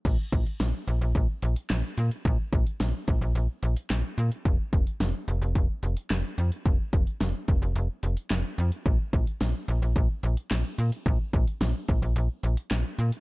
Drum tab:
CC |x---------------|----------------|----------------|----------------|
HH |x-xxx-xxx-xxx-xx|x-xxx-xxx-xxx-xx|x-xxx-xxx-xxx-xx|x-xxx-xxx-xxx-xx|
CP |------------x---|------------x---|------------x---|------------x---|
SD |----o-------o---|----o-------o---|----o-------o---|----o-------o---|
BD |o-o-----o-------|o-o---o---------|o-o-----o-------|o-o---o---------|

CC |----------------|----------------|
HH |x-xxx-xxx-xxx-xx|x-xxx-xxx-xxx-xx|
CP |------------x---|------------x---|
SD |----o-------o---|----o-------o---|
BD |o-o-----o-------|o-o---o---------|